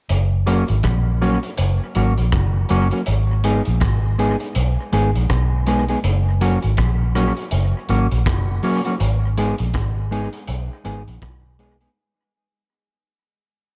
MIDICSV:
0, 0, Header, 1, 4, 480
1, 0, Start_track
1, 0, Key_signature, 6, "major"
1, 0, Tempo, 740741
1, 60, Time_signature, 4, 2, 24, 8
1, 8911, End_track
2, 0, Start_track
2, 0, Title_t, "Clean electric guitar"
2, 0, Program_c, 0, 27
2, 301, Note_on_c, 0, 54, 89
2, 303, Note_on_c, 0, 58, 89
2, 306, Note_on_c, 0, 61, 90
2, 308, Note_on_c, 0, 66, 90
2, 409, Note_off_c, 0, 54, 0
2, 410, Note_off_c, 0, 58, 0
2, 411, Note_off_c, 0, 61, 0
2, 412, Note_off_c, 0, 66, 0
2, 787, Note_on_c, 0, 54, 81
2, 788, Note_on_c, 0, 58, 90
2, 790, Note_on_c, 0, 61, 98
2, 792, Note_on_c, 0, 66, 85
2, 893, Note_off_c, 0, 54, 0
2, 894, Note_off_c, 0, 58, 0
2, 894, Note_off_c, 0, 61, 0
2, 896, Note_off_c, 0, 66, 0
2, 1267, Note_on_c, 0, 54, 68
2, 1271, Note_on_c, 0, 58, 75
2, 1273, Note_on_c, 0, 61, 68
2, 1274, Note_on_c, 0, 66, 82
2, 1374, Note_off_c, 0, 54, 0
2, 1376, Note_off_c, 0, 58, 0
2, 1377, Note_off_c, 0, 61, 0
2, 1378, Note_off_c, 0, 66, 0
2, 1749, Note_on_c, 0, 54, 85
2, 1751, Note_on_c, 0, 58, 91
2, 1755, Note_on_c, 0, 61, 83
2, 1755, Note_on_c, 0, 66, 99
2, 1856, Note_off_c, 0, 54, 0
2, 1857, Note_off_c, 0, 58, 0
2, 1859, Note_off_c, 0, 61, 0
2, 1859, Note_off_c, 0, 66, 0
2, 1894, Note_on_c, 0, 66, 54
2, 1896, Note_on_c, 0, 61, 52
2, 1899, Note_on_c, 0, 58, 49
2, 1901, Note_on_c, 0, 54, 43
2, 1948, Note_off_c, 0, 66, 0
2, 1949, Note_off_c, 0, 61, 0
2, 1951, Note_off_c, 0, 58, 0
2, 1952, Note_off_c, 0, 54, 0
2, 2229, Note_on_c, 0, 56, 68
2, 2232, Note_on_c, 0, 59, 76
2, 2234, Note_on_c, 0, 63, 84
2, 2236, Note_on_c, 0, 68, 75
2, 2337, Note_off_c, 0, 56, 0
2, 2338, Note_off_c, 0, 59, 0
2, 2339, Note_off_c, 0, 63, 0
2, 2340, Note_off_c, 0, 68, 0
2, 2712, Note_on_c, 0, 56, 75
2, 2714, Note_on_c, 0, 59, 90
2, 2717, Note_on_c, 0, 63, 87
2, 2720, Note_on_c, 0, 68, 90
2, 2819, Note_off_c, 0, 56, 0
2, 2820, Note_off_c, 0, 59, 0
2, 2822, Note_off_c, 0, 63, 0
2, 2823, Note_off_c, 0, 68, 0
2, 3190, Note_on_c, 0, 56, 74
2, 3194, Note_on_c, 0, 59, 73
2, 3195, Note_on_c, 0, 63, 83
2, 3198, Note_on_c, 0, 68, 88
2, 3299, Note_off_c, 0, 56, 0
2, 3301, Note_off_c, 0, 59, 0
2, 3301, Note_off_c, 0, 63, 0
2, 3303, Note_off_c, 0, 68, 0
2, 3674, Note_on_c, 0, 56, 87
2, 3677, Note_on_c, 0, 59, 87
2, 3678, Note_on_c, 0, 63, 84
2, 3681, Note_on_c, 0, 68, 88
2, 3781, Note_off_c, 0, 56, 0
2, 3782, Note_off_c, 0, 59, 0
2, 3783, Note_off_c, 0, 63, 0
2, 3785, Note_off_c, 0, 68, 0
2, 3821, Note_on_c, 0, 68, 64
2, 3823, Note_on_c, 0, 63, 55
2, 3825, Note_on_c, 0, 59, 57
2, 3828, Note_on_c, 0, 56, 49
2, 3874, Note_off_c, 0, 68, 0
2, 3875, Note_off_c, 0, 63, 0
2, 3876, Note_off_c, 0, 59, 0
2, 3878, Note_off_c, 0, 56, 0
2, 4154, Note_on_c, 0, 54, 78
2, 4154, Note_on_c, 0, 58, 76
2, 4158, Note_on_c, 0, 61, 82
2, 4159, Note_on_c, 0, 66, 93
2, 4261, Note_off_c, 0, 54, 0
2, 4261, Note_off_c, 0, 58, 0
2, 4263, Note_off_c, 0, 61, 0
2, 4264, Note_off_c, 0, 66, 0
2, 4634, Note_on_c, 0, 54, 84
2, 4636, Note_on_c, 0, 58, 87
2, 4639, Note_on_c, 0, 61, 90
2, 4641, Note_on_c, 0, 66, 85
2, 4741, Note_off_c, 0, 54, 0
2, 4742, Note_off_c, 0, 58, 0
2, 4744, Note_off_c, 0, 61, 0
2, 4744, Note_off_c, 0, 66, 0
2, 5113, Note_on_c, 0, 54, 77
2, 5117, Note_on_c, 0, 58, 88
2, 5119, Note_on_c, 0, 61, 87
2, 5121, Note_on_c, 0, 66, 92
2, 5221, Note_off_c, 0, 54, 0
2, 5222, Note_off_c, 0, 58, 0
2, 5223, Note_off_c, 0, 61, 0
2, 5225, Note_off_c, 0, 66, 0
2, 5593, Note_on_c, 0, 54, 88
2, 5597, Note_on_c, 0, 58, 91
2, 5599, Note_on_c, 0, 61, 90
2, 5600, Note_on_c, 0, 66, 88
2, 5700, Note_off_c, 0, 54, 0
2, 5702, Note_off_c, 0, 58, 0
2, 5703, Note_off_c, 0, 61, 0
2, 5704, Note_off_c, 0, 66, 0
2, 5738, Note_on_c, 0, 66, 65
2, 5742, Note_on_c, 0, 61, 55
2, 5744, Note_on_c, 0, 58, 56
2, 5746, Note_on_c, 0, 54, 42
2, 5793, Note_off_c, 0, 66, 0
2, 5795, Note_off_c, 0, 61, 0
2, 5796, Note_off_c, 0, 54, 0
2, 5796, Note_off_c, 0, 58, 0
2, 6075, Note_on_c, 0, 56, 86
2, 6078, Note_on_c, 0, 59, 78
2, 6081, Note_on_c, 0, 63, 83
2, 6083, Note_on_c, 0, 68, 79
2, 6181, Note_off_c, 0, 56, 0
2, 6182, Note_off_c, 0, 59, 0
2, 6183, Note_off_c, 0, 63, 0
2, 6185, Note_off_c, 0, 68, 0
2, 6552, Note_on_c, 0, 56, 78
2, 6555, Note_on_c, 0, 59, 76
2, 6557, Note_on_c, 0, 63, 85
2, 6559, Note_on_c, 0, 68, 81
2, 6658, Note_off_c, 0, 56, 0
2, 6660, Note_off_c, 0, 59, 0
2, 6661, Note_off_c, 0, 63, 0
2, 6662, Note_off_c, 0, 68, 0
2, 7027, Note_on_c, 0, 56, 81
2, 7030, Note_on_c, 0, 59, 80
2, 7033, Note_on_c, 0, 63, 83
2, 7035, Note_on_c, 0, 68, 88
2, 7135, Note_off_c, 0, 56, 0
2, 7136, Note_off_c, 0, 59, 0
2, 7138, Note_off_c, 0, 63, 0
2, 7139, Note_off_c, 0, 68, 0
2, 7510, Note_on_c, 0, 56, 80
2, 7514, Note_on_c, 0, 59, 83
2, 7516, Note_on_c, 0, 63, 78
2, 7516, Note_on_c, 0, 68, 88
2, 7615, Note_off_c, 0, 56, 0
2, 7617, Note_off_c, 0, 59, 0
2, 7618, Note_off_c, 0, 63, 0
2, 7619, Note_off_c, 0, 68, 0
2, 7654, Note_on_c, 0, 68, 60
2, 7657, Note_on_c, 0, 63, 53
2, 7659, Note_on_c, 0, 59, 48
2, 7661, Note_on_c, 0, 56, 42
2, 7707, Note_off_c, 0, 68, 0
2, 7709, Note_off_c, 0, 63, 0
2, 7710, Note_off_c, 0, 59, 0
2, 7711, Note_off_c, 0, 56, 0
2, 8911, End_track
3, 0, Start_track
3, 0, Title_t, "Fingered electric bass"
3, 0, Program_c, 1, 33
3, 66, Note_on_c, 1, 30, 93
3, 403, Note_off_c, 1, 30, 0
3, 453, Note_on_c, 1, 32, 87
3, 533, Note_off_c, 1, 32, 0
3, 546, Note_on_c, 1, 34, 83
3, 883, Note_off_c, 1, 34, 0
3, 1029, Note_on_c, 1, 30, 82
3, 1155, Note_off_c, 1, 30, 0
3, 1270, Note_on_c, 1, 32, 85
3, 1396, Note_off_c, 1, 32, 0
3, 1418, Note_on_c, 1, 34, 79
3, 1498, Note_off_c, 1, 34, 0
3, 1507, Note_on_c, 1, 30, 86
3, 1717, Note_off_c, 1, 30, 0
3, 1754, Note_on_c, 1, 30, 85
3, 1879, Note_off_c, 1, 30, 0
3, 1995, Note_on_c, 1, 32, 88
3, 2331, Note_off_c, 1, 32, 0
3, 2381, Note_on_c, 1, 34, 83
3, 2461, Note_off_c, 1, 34, 0
3, 2473, Note_on_c, 1, 32, 80
3, 2810, Note_off_c, 1, 32, 0
3, 2955, Note_on_c, 1, 35, 87
3, 3081, Note_off_c, 1, 35, 0
3, 3195, Note_on_c, 1, 32, 85
3, 3321, Note_off_c, 1, 32, 0
3, 3343, Note_on_c, 1, 34, 78
3, 3424, Note_off_c, 1, 34, 0
3, 3435, Note_on_c, 1, 35, 89
3, 3854, Note_off_c, 1, 35, 0
3, 3916, Note_on_c, 1, 30, 106
3, 4253, Note_off_c, 1, 30, 0
3, 4304, Note_on_c, 1, 32, 85
3, 4384, Note_off_c, 1, 32, 0
3, 4395, Note_on_c, 1, 34, 93
3, 4732, Note_off_c, 1, 34, 0
3, 4876, Note_on_c, 1, 30, 97
3, 5002, Note_off_c, 1, 30, 0
3, 5115, Note_on_c, 1, 32, 84
3, 5242, Note_off_c, 1, 32, 0
3, 5261, Note_on_c, 1, 34, 91
3, 5355, Note_off_c, 1, 34, 0
3, 5355, Note_on_c, 1, 30, 94
3, 5564, Note_off_c, 1, 30, 0
3, 5836, Note_on_c, 1, 32, 91
3, 6171, Note_off_c, 1, 32, 0
3, 6221, Note_on_c, 1, 34, 82
3, 6302, Note_off_c, 1, 34, 0
3, 6315, Note_on_c, 1, 32, 81
3, 6650, Note_off_c, 1, 32, 0
3, 6794, Note_on_c, 1, 35, 91
3, 6919, Note_off_c, 1, 35, 0
3, 7033, Note_on_c, 1, 32, 90
3, 7159, Note_off_c, 1, 32, 0
3, 7178, Note_on_c, 1, 34, 87
3, 7258, Note_off_c, 1, 34, 0
3, 7270, Note_on_c, 1, 35, 89
3, 7687, Note_off_c, 1, 35, 0
3, 8911, End_track
4, 0, Start_track
4, 0, Title_t, "Drums"
4, 61, Note_on_c, 9, 42, 82
4, 126, Note_off_c, 9, 42, 0
4, 305, Note_on_c, 9, 42, 80
4, 369, Note_off_c, 9, 42, 0
4, 442, Note_on_c, 9, 42, 45
4, 507, Note_off_c, 9, 42, 0
4, 540, Note_on_c, 9, 42, 70
4, 544, Note_on_c, 9, 36, 90
4, 547, Note_on_c, 9, 37, 88
4, 604, Note_off_c, 9, 42, 0
4, 609, Note_off_c, 9, 36, 0
4, 612, Note_off_c, 9, 37, 0
4, 791, Note_on_c, 9, 42, 60
4, 856, Note_off_c, 9, 42, 0
4, 927, Note_on_c, 9, 42, 48
4, 991, Note_off_c, 9, 42, 0
4, 1020, Note_on_c, 9, 42, 102
4, 1085, Note_off_c, 9, 42, 0
4, 1263, Note_on_c, 9, 42, 76
4, 1328, Note_off_c, 9, 42, 0
4, 1410, Note_on_c, 9, 42, 53
4, 1475, Note_off_c, 9, 42, 0
4, 1505, Note_on_c, 9, 37, 109
4, 1506, Note_on_c, 9, 36, 95
4, 1508, Note_on_c, 9, 42, 70
4, 1570, Note_off_c, 9, 37, 0
4, 1571, Note_off_c, 9, 36, 0
4, 1573, Note_off_c, 9, 42, 0
4, 1743, Note_on_c, 9, 42, 80
4, 1807, Note_off_c, 9, 42, 0
4, 1886, Note_on_c, 9, 42, 53
4, 1951, Note_off_c, 9, 42, 0
4, 1983, Note_on_c, 9, 42, 88
4, 2048, Note_off_c, 9, 42, 0
4, 2228, Note_on_c, 9, 42, 82
4, 2293, Note_off_c, 9, 42, 0
4, 2367, Note_on_c, 9, 42, 44
4, 2432, Note_off_c, 9, 42, 0
4, 2464, Note_on_c, 9, 42, 63
4, 2471, Note_on_c, 9, 36, 89
4, 2472, Note_on_c, 9, 37, 96
4, 2529, Note_off_c, 9, 42, 0
4, 2536, Note_off_c, 9, 36, 0
4, 2537, Note_off_c, 9, 37, 0
4, 2716, Note_on_c, 9, 42, 66
4, 2781, Note_off_c, 9, 42, 0
4, 2852, Note_on_c, 9, 42, 45
4, 2917, Note_off_c, 9, 42, 0
4, 2948, Note_on_c, 9, 42, 93
4, 3013, Note_off_c, 9, 42, 0
4, 3193, Note_on_c, 9, 42, 72
4, 3258, Note_off_c, 9, 42, 0
4, 3340, Note_on_c, 9, 42, 56
4, 3405, Note_off_c, 9, 42, 0
4, 3433, Note_on_c, 9, 36, 95
4, 3433, Note_on_c, 9, 37, 107
4, 3436, Note_on_c, 9, 42, 74
4, 3498, Note_off_c, 9, 36, 0
4, 3498, Note_off_c, 9, 37, 0
4, 3501, Note_off_c, 9, 42, 0
4, 3671, Note_on_c, 9, 42, 74
4, 3736, Note_off_c, 9, 42, 0
4, 3813, Note_on_c, 9, 42, 47
4, 3878, Note_off_c, 9, 42, 0
4, 3913, Note_on_c, 9, 42, 90
4, 3978, Note_off_c, 9, 42, 0
4, 4155, Note_on_c, 9, 42, 75
4, 4220, Note_off_c, 9, 42, 0
4, 4292, Note_on_c, 9, 42, 44
4, 4357, Note_off_c, 9, 42, 0
4, 4388, Note_on_c, 9, 42, 73
4, 4394, Note_on_c, 9, 36, 87
4, 4396, Note_on_c, 9, 37, 96
4, 4453, Note_off_c, 9, 42, 0
4, 4459, Note_off_c, 9, 36, 0
4, 4461, Note_off_c, 9, 37, 0
4, 4636, Note_on_c, 9, 37, 54
4, 4638, Note_on_c, 9, 42, 65
4, 4700, Note_off_c, 9, 37, 0
4, 4703, Note_off_c, 9, 42, 0
4, 4774, Note_on_c, 9, 42, 47
4, 4838, Note_off_c, 9, 42, 0
4, 4867, Note_on_c, 9, 42, 97
4, 4932, Note_off_c, 9, 42, 0
4, 5111, Note_on_c, 9, 42, 68
4, 5176, Note_off_c, 9, 42, 0
4, 5258, Note_on_c, 9, 42, 55
4, 5323, Note_off_c, 9, 42, 0
4, 5353, Note_on_c, 9, 36, 106
4, 5357, Note_on_c, 9, 37, 99
4, 5360, Note_on_c, 9, 42, 80
4, 5418, Note_off_c, 9, 36, 0
4, 5422, Note_off_c, 9, 37, 0
4, 5425, Note_off_c, 9, 42, 0
4, 5591, Note_on_c, 9, 46, 52
4, 5656, Note_off_c, 9, 46, 0
4, 5734, Note_on_c, 9, 42, 51
4, 5798, Note_off_c, 9, 42, 0
4, 5832, Note_on_c, 9, 42, 90
4, 5897, Note_off_c, 9, 42, 0
4, 6075, Note_on_c, 9, 42, 85
4, 6140, Note_off_c, 9, 42, 0
4, 6210, Note_on_c, 9, 42, 48
4, 6275, Note_off_c, 9, 42, 0
4, 6309, Note_on_c, 9, 42, 71
4, 6313, Note_on_c, 9, 36, 87
4, 6317, Note_on_c, 9, 37, 91
4, 6374, Note_off_c, 9, 42, 0
4, 6378, Note_off_c, 9, 36, 0
4, 6382, Note_off_c, 9, 37, 0
4, 6559, Note_on_c, 9, 42, 63
4, 6624, Note_off_c, 9, 42, 0
4, 6693, Note_on_c, 9, 42, 50
4, 6758, Note_off_c, 9, 42, 0
4, 6788, Note_on_c, 9, 42, 97
4, 6852, Note_off_c, 9, 42, 0
4, 7030, Note_on_c, 9, 42, 74
4, 7095, Note_off_c, 9, 42, 0
4, 7179, Note_on_c, 9, 42, 54
4, 7243, Note_off_c, 9, 42, 0
4, 7270, Note_on_c, 9, 36, 106
4, 7274, Note_on_c, 9, 37, 103
4, 7276, Note_on_c, 9, 42, 71
4, 7335, Note_off_c, 9, 36, 0
4, 7339, Note_off_c, 9, 37, 0
4, 7341, Note_off_c, 9, 42, 0
4, 7511, Note_on_c, 9, 42, 74
4, 7576, Note_off_c, 9, 42, 0
4, 7651, Note_on_c, 9, 42, 53
4, 7716, Note_off_c, 9, 42, 0
4, 8911, End_track
0, 0, End_of_file